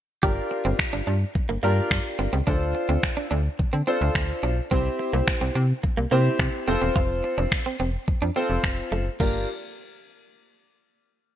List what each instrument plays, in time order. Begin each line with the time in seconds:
0.23 fm bass G1, grand piano D4 F4 G4 A#4, clean electric guitar G4, kick
0.51 muted clean electric guitar stroke
0.65 fm bass G1, clean electric guitar C4
0.79 finger snap, muted clean electric guitar stroke, kick
0.93 fm bass G1, clean electric guitar D4
1.07 fm bass G2, clean electric guitar D4
1.35 muted clean electric guitar stroke, kick
1.49 fm bass G1, clean electric guitar A#3
1.63 fm bass G2, clean electric guitar A#3, grand piano D4 F4 G4 A#4
1.91 fm bass G2, finger snap, muted clean electric guitar stroke, kick
2.19 fm bass G1, clean electric guitar C4
2.33 fm bass C#2, clean electric guitar C4
2.47 fm bass D2, clean electric guitar D4, grand piano D4 F4 A4 C5, kick
2.75 muted clean electric guitar stroke
2.89 fm bass D2, clean electric guitar C4
3.03 finger snap, muted clean electric guitar stroke, kick
3.17 clean electric guitar D4
3.31 fm bass D2, clean electric guitar D4
3.59 fm bass D3, muted clean electric guitar stroke, kick
3.73 fm bass D3, clean electric guitar C4
3.87 clean electric guitar C4, grand piano D4 F4 A4 C5
4.01 fm bass D2
4.15 fm bass D2, finger snap, kick
4.43 fm bass B1, clean electric guitar D4
4.71 fm bass C2, clean electric guitar C4, grand piano C4 E4 G4 C5, kick
4.99 muted clean electric guitar stroke
5.13 fm bass C2, clean electric guitar A#3
5.28 finger snap, muted clean electric guitar stroke, kick
5.41 fm bass C2, clean electric guitar C4
5.55 fm bass C3, clean electric guitar C4
5.83 muted clean electric guitar stroke, kick
5.97 fm bass C2, clean electric guitar A#3
6.11 fm bass C3, clean electric guitar A#3, grand piano C4 E4 G4 C5
6.39 fm bass C3, finger snap, muted clean electric guitar stroke, kick
6.68 fm bass F1, clean electric guitar C4, grand piano C4 F4 A4 C5
6.82 fm bass E1, clean electric guitar C4
6.96 fm bass F1, clean electric guitar F4, kick
7.24 muted clean electric guitar stroke
7.38 fm bass F1, clean electric guitar D4
7.52 finger snap, muted clean electric guitar stroke, kick
7.66 clean electric guitar C4
7.80 fm bass F1, clean electric guitar C4
8.08 fm bass F2, muted clean electric guitar stroke, kick
8.22 fm bass F2, clean electric guitar D4
8.36 grand piano C4 F4 A4 C5, clean electric guitar C4
8.50 fm bass F1
8.64 fm bass F1, finger snap, kick
8.92 fm bass F#1, clean electric guitar A3
9.20 fm bass G1, clean electric guitar A#3, grand piano D4 F4 G4 A#4, kick, crash